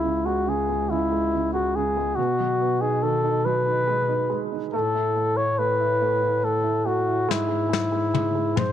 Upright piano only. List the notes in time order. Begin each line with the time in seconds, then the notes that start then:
Already playing: C#3 G#3
0.04 C#3
0.26 G#3
0.47 C#3
0.69 G#3
0.90 C#3
1.12 G#3
1.34 C#3
1.55 G#3
1.77 C#3
1.97 G#3
2.18 B2
2.40 F#3
2.60 B3
2.82 D#4
3.03 D#3
3.24 D#4
3.46 F#3
3.66 D#4
3.88 G#3
4.09 D#4
4.30 G#3
4.52 D#4
4.74 A3
4.95 E4
5.16 A3
5.37 E4
5.59 A3
5.80 E4
6.01 A3
6.22 E4
6.43 A3
6.63 E4
6.86 A3
7.07 E4
7.29 G#3
7.48 G#3
7.69 G#3
7.92 G#3
8.14 G#3
8.35 G#3
8.56 G#3